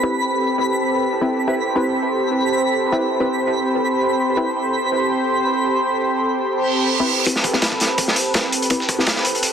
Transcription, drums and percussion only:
0, 0, Header, 1, 2, 480
1, 0, Start_track
1, 0, Key_signature, 0, "minor"
1, 0, Tempo, 361446
1, 44, Time_signature, 4, 2, 24, 8
1, 12652, End_track
2, 0, Start_track
2, 0, Title_t, "Drums"
2, 9638, Note_on_c, 9, 42, 81
2, 9648, Note_on_c, 9, 36, 96
2, 9650, Note_off_c, 9, 42, 0
2, 9650, Note_on_c, 9, 42, 92
2, 9770, Note_on_c, 9, 38, 42
2, 9780, Note_off_c, 9, 36, 0
2, 9782, Note_off_c, 9, 42, 0
2, 9879, Note_on_c, 9, 42, 63
2, 9882, Note_on_c, 9, 36, 94
2, 9883, Note_off_c, 9, 42, 0
2, 9883, Note_on_c, 9, 42, 59
2, 9902, Note_off_c, 9, 38, 0
2, 10005, Note_on_c, 9, 38, 39
2, 10015, Note_off_c, 9, 36, 0
2, 10016, Note_off_c, 9, 42, 0
2, 10119, Note_off_c, 9, 38, 0
2, 10119, Note_on_c, 9, 38, 114
2, 10119, Note_on_c, 9, 42, 86
2, 10122, Note_off_c, 9, 38, 0
2, 10122, Note_on_c, 9, 38, 110
2, 10249, Note_on_c, 9, 36, 79
2, 10252, Note_off_c, 9, 42, 0
2, 10255, Note_off_c, 9, 38, 0
2, 10359, Note_on_c, 9, 42, 68
2, 10367, Note_off_c, 9, 42, 0
2, 10367, Note_on_c, 9, 42, 64
2, 10374, Note_on_c, 9, 38, 47
2, 10382, Note_off_c, 9, 36, 0
2, 10500, Note_off_c, 9, 42, 0
2, 10506, Note_off_c, 9, 38, 0
2, 10596, Note_on_c, 9, 42, 86
2, 10599, Note_on_c, 9, 36, 103
2, 10600, Note_off_c, 9, 42, 0
2, 10600, Note_on_c, 9, 42, 83
2, 10728, Note_on_c, 9, 38, 48
2, 10732, Note_off_c, 9, 36, 0
2, 10732, Note_off_c, 9, 42, 0
2, 10837, Note_on_c, 9, 42, 66
2, 10840, Note_on_c, 9, 46, 75
2, 10861, Note_off_c, 9, 38, 0
2, 10970, Note_off_c, 9, 42, 0
2, 10973, Note_off_c, 9, 46, 0
2, 11076, Note_on_c, 9, 42, 76
2, 11079, Note_off_c, 9, 42, 0
2, 11079, Note_on_c, 9, 38, 104
2, 11079, Note_on_c, 9, 42, 79
2, 11089, Note_off_c, 9, 38, 0
2, 11089, Note_on_c, 9, 38, 101
2, 11212, Note_off_c, 9, 42, 0
2, 11221, Note_off_c, 9, 38, 0
2, 11320, Note_on_c, 9, 42, 65
2, 11324, Note_off_c, 9, 42, 0
2, 11324, Note_on_c, 9, 42, 69
2, 11452, Note_off_c, 9, 42, 0
2, 11452, Note_on_c, 9, 42, 40
2, 11554, Note_off_c, 9, 42, 0
2, 11554, Note_on_c, 9, 42, 89
2, 11560, Note_off_c, 9, 42, 0
2, 11560, Note_on_c, 9, 42, 89
2, 11561, Note_on_c, 9, 36, 100
2, 11689, Note_on_c, 9, 38, 39
2, 11692, Note_off_c, 9, 42, 0
2, 11694, Note_off_c, 9, 36, 0
2, 11802, Note_on_c, 9, 36, 97
2, 11802, Note_on_c, 9, 42, 65
2, 11803, Note_off_c, 9, 42, 0
2, 11803, Note_on_c, 9, 42, 63
2, 11822, Note_off_c, 9, 38, 0
2, 11935, Note_off_c, 9, 36, 0
2, 11936, Note_off_c, 9, 42, 0
2, 11942, Note_on_c, 9, 38, 45
2, 12040, Note_off_c, 9, 38, 0
2, 12040, Note_on_c, 9, 38, 110
2, 12040, Note_on_c, 9, 42, 81
2, 12044, Note_off_c, 9, 42, 0
2, 12044, Note_on_c, 9, 42, 78
2, 12050, Note_off_c, 9, 38, 0
2, 12050, Note_on_c, 9, 38, 112
2, 12169, Note_off_c, 9, 38, 0
2, 12169, Note_on_c, 9, 38, 44
2, 12177, Note_off_c, 9, 42, 0
2, 12280, Note_on_c, 9, 42, 68
2, 12282, Note_off_c, 9, 42, 0
2, 12282, Note_on_c, 9, 42, 70
2, 12301, Note_off_c, 9, 38, 0
2, 12415, Note_off_c, 9, 42, 0
2, 12415, Note_on_c, 9, 42, 39
2, 12520, Note_off_c, 9, 42, 0
2, 12520, Note_on_c, 9, 42, 87
2, 12522, Note_off_c, 9, 42, 0
2, 12522, Note_on_c, 9, 42, 80
2, 12652, Note_off_c, 9, 42, 0
2, 12652, End_track
0, 0, End_of_file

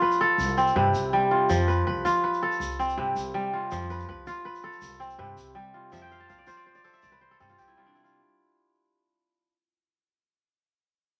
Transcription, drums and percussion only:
0, 0, Header, 1, 2, 480
1, 0, Start_track
1, 0, Tempo, 368777
1, 1946, Time_signature, 12, 3, 24, 8
1, 14568, End_track
2, 0, Start_track
2, 0, Title_t, "Drums"
2, 151, Note_on_c, 9, 82, 22
2, 281, Note_off_c, 9, 82, 0
2, 510, Note_on_c, 9, 82, 61
2, 640, Note_off_c, 9, 82, 0
2, 748, Note_on_c, 9, 82, 20
2, 872, Note_off_c, 9, 82, 0
2, 872, Note_on_c, 9, 82, 21
2, 1002, Note_off_c, 9, 82, 0
2, 1229, Note_on_c, 9, 82, 63
2, 1359, Note_off_c, 9, 82, 0
2, 1950, Note_on_c, 9, 82, 61
2, 2081, Note_off_c, 9, 82, 0
2, 2199, Note_on_c, 9, 82, 21
2, 2329, Note_off_c, 9, 82, 0
2, 2677, Note_on_c, 9, 82, 64
2, 2807, Note_off_c, 9, 82, 0
2, 3041, Note_on_c, 9, 82, 22
2, 3171, Note_off_c, 9, 82, 0
2, 3275, Note_on_c, 9, 82, 21
2, 3400, Note_off_c, 9, 82, 0
2, 3400, Note_on_c, 9, 82, 66
2, 3527, Note_off_c, 9, 82, 0
2, 3527, Note_on_c, 9, 82, 20
2, 3642, Note_off_c, 9, 82, 0
2, 3642, Note_on_c, 9, 82, 21
2, 3764, Note_off_c, 9, 82, 0
2, 3764, Note_on_c, 9, 82, 22
2, 3894, Note_off_c, 9, 82, 0
2, 4119, Note_on_c, 9, 82, 66
2, 4249, Note_off_c, 9, 82, 0
2, 4835, Note_on_c, 9, 82, 66
2, 4965, Note_off_c, 9, 82, 0
2, 5075, Note_on_c, 9, 82, 21
2, 5200, Note_off_c, 9, 82, 0
2, 5200, Note_on_c, 9, 82, 22
2, 5330, Note_off_c, 9, 82, 0
2, 5558, Note_on_c, 9, 82, 69
2, 5688, Note_off_c, 9, 82, 0
2, 5923, Note_on_c, 9, 82, 24
2, 6053, Note_off_c, 9, 82, 0
2, 6148, Note_on_c, 9, 82, 22
2, 6268, Note_off_c, 9, 82, 0
2, 6268, Note_on_c, 9, 82, 74
2, 6397, Note_off_c, 9, 82, 0
2, 6397, Note_on_c, 9, 82, 19
2, 6518, Note_off_c, 9, 82, 0
2, 6518, Note_on_c, 9, 82, 24
2, 6638, Note_off_c, 9, 82, 0
2, 6638, Note_on_c, 9, 82, 23
2, 6769, Note_off_c, 9, 82, 0
2, 6997, Note_on_c, 9, 82, 76
2, 7127, Note_off_c, 9, 82, 0
2, 7710, Note_on_c, 9, 82, 70
2, 7840, Note_off_c, 9, 82, 0
2, 7955, Note_on_c, 9, 82, 23
2, 8085, Note_off_c, 9, 82, 0
2, 8191, Note_on_c, 9, 82, 22
2, 8321, Note_off_c, 9, 82, 0
2, 8422, Note_on_c, 9, 82, 70
2, 8552, Note_off_c, 9, 82, 0
2, 8780, Note_on_c, 9, 82, 23
2, 8902, Note_off_c, 9, 82, 0
2, 8902, Note_on_c, 9, 82, 22
2, 9020, Note_off_c, 9, 82, 0
2, 9020, Note_on_c, 9, 82, 21
2, 9134, Note_off_c, 9, 82, 0
2, 9134, Note_on_c, 9, 82, 69
2, 9264, Note_off_c, 9, 82, 0
2, 9630, Note_on_c, 9, 82, 21
2, 9742, Note_off_c, 9, 82, 0
2, 9742, Note_on_c, 9, 82, 20
2, 9869, Note_off_c, 9, 82, 0
2, 9869, Note_on_c, 9, 82, 67
2, 9982, Note_off_c, 9, 82, 0
2, 9982, Note_on_c, 9, 82, 22
2, 10112, Note_off_c, 9, 82, 0
2, 10354, Note_on_c, 9, 82, 19
2, 10482, Note_off_c, 9, 82, 0
2, 10482, Note_on_c, 9, 82, 24
2, 10612, Note_off_c, 9, 82, 0
2, 14568, End_track
0, 0, End_of_file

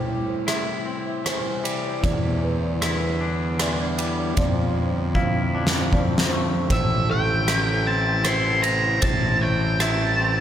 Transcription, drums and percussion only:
0, 0, Header, 1, 2, 480
1, 0, Start_track
1, 0, Tempo, 778210
1, 1251, Time_signature, 3, 2, 24, 8
1, 6417, End_track
2, 0, Start_track
2, 0, Title_t, "Drums"
2, 295, Note_on_c, 9, 37, 59
2, 295, Note_on_c, 9, 51, 45
2, 357, Note_off_c, 9, 37, 0
2, 357, Note_off_c, 9, 51, 0
2, 777, Note_on_c, 9, 37, 61
2, 777, Note_on_c, 9, 51, 48
2, 838, Note_off_c, 9, 37, 0
2, 838, Note_off_c, 9, 51, 0
2, 1019, Note_on_c, 9, 51, 43
2, 1081, Note_off_c, 9, 51, 0
2, 1256, Note_on_c, 9, 36, 78
2, 1258, Note_on_c, 9, 51, 44
2, 1318, Note_off_c, 9, 36, 0
2, 1320, Note_off_c, 9, 51, 0
2, 1739, Note_on_c, 9, 37, 65
2, 1739, Note_on_c, 9, 51, 48
2, 1801, Note_off_c, 9, 37, 0
2, 1801, Note_off_c, 9, 51, 0
2, 2217, Note_on_c, 9, 37, 63
2, 2217, Note_on_c, 9, 51, 52
2, 2279, Note_off_c, 9, 37, 0
2, 2279, Note_off_c, 9, 51, 0
2, 2458, Note_on_c, 9, 51, 41
2, 2520, Note_off_c, 9, 51, 0
2, 2695, Note_on_c, 9, 51, 44
2, 2698, Note_on_c, 9, 36, 78
2, 2757, Note_off_c, 9, 51, 0
2, 2759, Note_off_c, 9, 36, 0
2, 3177, Note_on_c, 9, 36, 43
2, 3238, Note_off_c, 9, 36, 0
2, 3496, Note_on_c, 9, 38, 57
2, 3557, Note_off_c, 9, 38, 0
2, 3655, Note_on_c, 9, 36, 51
2, 3717, Note_off_c, 9, 36, 0
2, 3811, Note_on_c, 9, 38, 66
2, 3873, Note_off_c, 9, 38, 0
2, 4134, Note_on_c, 9, 36, 76
2, 4135, Note_on_c, 9, 51, 47
2, 4196, Note_off_c, 9, 36, 0
2, 4197, Note_off_c, 9, 51, 0
2, 4613, Note_on_c, 9, 37, 65
2, 4613, Note_on_c, 9, 51, 49
2, 4675, Note_off_c, 9, 37, 0
2, 4675, Note_off_c, 9, 51, 0
2, 5086, Note_on_c, 9, 37, 61
2, 5086, Note_on_c, 9, 51, 51
2, 5148, Note_off_c, 9, 37, 0
2, 5148, Note_off_c, 9, 51, 0
2, 5327, Note_on_c, 9, 51, 45
2, 5388, Note_off_c, 9, 51, 0
2, 5563, Note_on_c, 9, 51, 52
2, 5569, Note_on_c, 9, 36, 83
2, 5624, Note_off_c, 9, 51, 0
2, 5630, Note_off_c, 9, 36, 0
2, 6046, Note_on_c, 9, 37, 71
2, 6046, Note_on_c, 9, 51, 51
2, 6107, Note_off_c, 9, 37, 0
2, 6107, Note_off_c, 9, 51, 0
2, 6417, End_track
0, 0, End_of_file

